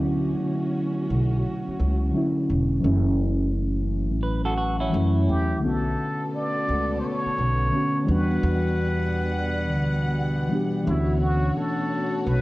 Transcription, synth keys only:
Already playing: D3 F#3 A3 C#4 E4
2.11 D3 F#3 A3
2.15 C#4 E4
2.81 E3 F#3 A3
2.85 C#4 E4
4.90 E3 F#3 A3
4.95 C#4 E4
5.59 D3 A3 B3
5.64 C#4 F#4
7.70 D3 A3 B3
7.74 C#4 F#4
8.04 E3 G3 B3
8.09 D4 F#4
10.48 E3 G3 B3
10.53 D4 G4
10.83 E3 A3 C#4
10.88 D4 F#4

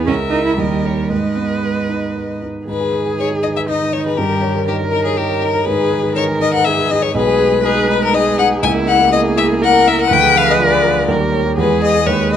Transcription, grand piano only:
Already playing: E2 E4 G#4
0.07 C#2
0.32 E4 A#4
0.58 D#2
0.84 D#4 A#4
1.10 G#2
1.36 B3
1.63 B4
1.89 D#4
2.16 B4
2.42 D#4
2.68 G#2
2.80 G#4
2.93 B4
3.06 G#4
3.19 D#4
3.31 G#4
3.44 D#4
3.56 B4
3.68 D#4
3.81 B4
3.93 D#4
4.06 G#4
4.18 G2
4.30 A#4
4.42 C#5
4.55 A#4
4.68 D#4
4.81 A#4
4.93 D#4
5.05 C#5
5.17 D#4
5.30 C#5
5.42 D#4
5.54 A#4
5.67 G#2
5.78 G#4
5.90 B4
6.03 G#4
6.16 D#4
6.28 G#4
6.40 D#4
6.53 B4
6.66 D#4
6.79 B4
6.91 D#4
7.03 G#4
7.15 B1
7.27 G#4
7.40 B4
7.52 G#4
7.64 D#4
7.75 G#4
7.89 D#4
8.00 B4
8.13 D#4
8.26 B4
8.38 D#4
8.50 G#4
8.62 C#2
8.74 A#4
8.87 E4
8.99 A#4
9.11 E4
9.24 A#4
9.36 E4
9.49 A#4
9.61 E4
9.73 A#4
9.86 E4
9.98 A#4
10.11 D2
10.23 G#4
10.35 B4
10.48 G#4
10.59 F4
10.71 G#4
10.84 F4
10.96 B4
11.08 D#2
11.20 G4
11.32 C#5
11.45 G4
11.57 E2
11.70 G#4
11.82 B4
11.94 G#4
12.06 D#2
12.20 G#4
12.33 B4

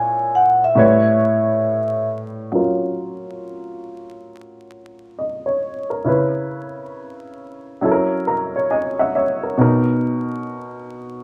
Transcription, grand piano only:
Already playing: A#2 G#3 E4 C#5
0.75 A2 G3 B4 C#5
2.52 F#3 C#4 F4 A#4
5.19 D#5
5.46 C#5
5.90 A#4
6.04 C#3 C#4 E4 B4
7.81 F#3 C#4 E4 A4
7.91 A#4
8.27 A#4 A#5
8.56 C#5
8.71 D#5 G#5
8.99 E5 F#5
9.15 C#5 E5
9.43 A#4
9.57 B2 B3 D#4 A#4

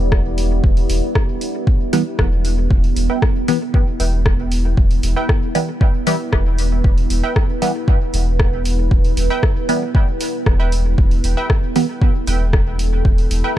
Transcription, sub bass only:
Already playing: E1
0.64 E1
0.90 E1
2.19 E1
2.71 E1
2.96 E1
4.00 E1
4.77 E1
5.03 E1
6.33 E1
6.84 E1
7.10 E1
8.14 E1
8.91 E1
9.17 E1
10.46 E1
10.98 E1
11.24 E1
12.27 E1
13.05 E1
13.31 E1

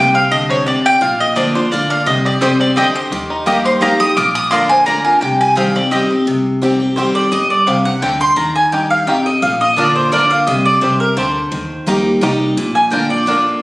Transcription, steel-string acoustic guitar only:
Already playing: C3
0.32 D3
0.66 C3
1.01 A#2
1.36 D3 A#3 D4 F4
1.55 D4 F4
1.72 D3 A#3 D4 F4
2.06 C3
2.42 C3
2.77 D3
3.12 D#3
3.46 G3 A#3 D#4 G4
3.81 G3 A#3 D#4 G4
4.00 D#4 G4
4.18 A#2
4.52 D3 A#3 D4 F4
4.86 D3 A#3 D4 F4
5.06 D4 F4
5.22 C3
5.55 D#3 G3 C4 G4
5.75 C4 G4
5.91 D#3 G3 C4 G4
6.10 C4 G4
6.27 C3
6.62 D#3 G3 C4 G4
6.80 C4 G4
6.97 D#3 G3 C4 G4
7.32 G2
7.67 C3
8.02 D3
8.36 D#3
8.72 G2
9.07 C3
9.42 A#2
9.76 D3 A#3 D4 F4
10.12 D3 A#3 D4 F4
10.47 C3
10.81 C3
11.17 D3
11.52 D#3
11.86 G3 A#3 D#4 G4
12.21 G3 A#3 D#4 G4
12.57 A#2
12.90 D3 A#3 D4 F4
13.09 D4 F4
13.26 D3 A#3 D4 F4

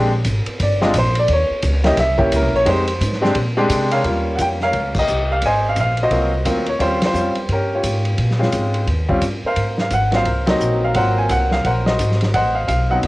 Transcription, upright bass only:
Already playing: A#1
0.25 G#1
0.46 muted upright bass stroke
0.60 G1
0.94 A#1
1.29 D#2
1.50 muted upright bass stroke
1.63 C#2
1.97 C2
2.32 C#2
2.42 C2
2.53 A#1
2.66 F2
3.01 G#2
3.35 A#2
3.70 C3
4.04 D#2
4.38 F2
4.74 C#2
5.09 C2
5.43 G#1
5.76 A#1
6.10 C2
6.45 D2
6.80 D#2
7.14 F2
7.36 muted upright bass stroke
7.48 G2
7.83 G#2
8.18 A#2
8.53 G#2
8.87 D#2
9.22 G2
9.44 muted upright bass stroke
9.56 G#2
9.91 G#1
10.26 C2
10.60 A#1
10.95 G#1
11.29 C2
11.65 A#1
11.99 G#1
12.34 A1
12.68 B1
13.03 C2

